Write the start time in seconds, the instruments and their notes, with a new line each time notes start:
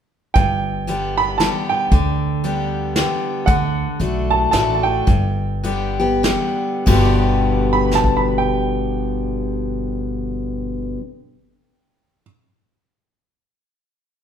0.34 upright bass G1, steel-string acoustic guitar G2, upright piano G5, kick, closed hi-hat
0.87 steel-string acoustic guitar D3 G3 B3 G4, closed hi-hat
1.18 upright piano B5
1.38 steel-string acoustic guitar D3 G3 B3 G4, upright piano A5, snare, closed hi-hat
1.69 upright piano G5
1.92 upright bass D2, steel-string acoustic guitar D3, kick, closed hi-hat
2.44 steel-string acoustic guitar D3 G3 B3 G4, closed hi-hat
2.96 steel-string acoustic guitar D3 G3 B3 G4, snare, closed hi-hat
3.46 upright bass D2, steel-string acoustic guitar D3, upright piano F#5, kick, closed hi-hat
4.00 upright bass B1, steel-string acoustic guitar D3 A3 D4 F#4, closed hi-hat
4.31 upright piano A5
4.51 upright bass A1, steel-string acoustic guitar D3 A3 D4 F#4, upright piano A5, snare, closed hi-hat
4.75 upright piano A5
4.83 upright piano G5
5.07 upright bass G1, steel-string acoustic guitar G2, kick, closed hi-hat
5.64 steel-string acoustic guitar D3 G3 B3 G4, closed hi-hat
6.00 steel-string acoustic guitar B3 G4
6.23 steel-string acoustic guitar D3 G3 B3 G4, snare, closed hi-hat
6.86 upright bass G1, steel-string acoustic guitar G2 B2 D3 G3 B3 G4, kick, crash
7.73 upright piano B5
7.91 upright piano A5, snare
8.04 kick
8.17 upright piano B5
8.38 upright piano G5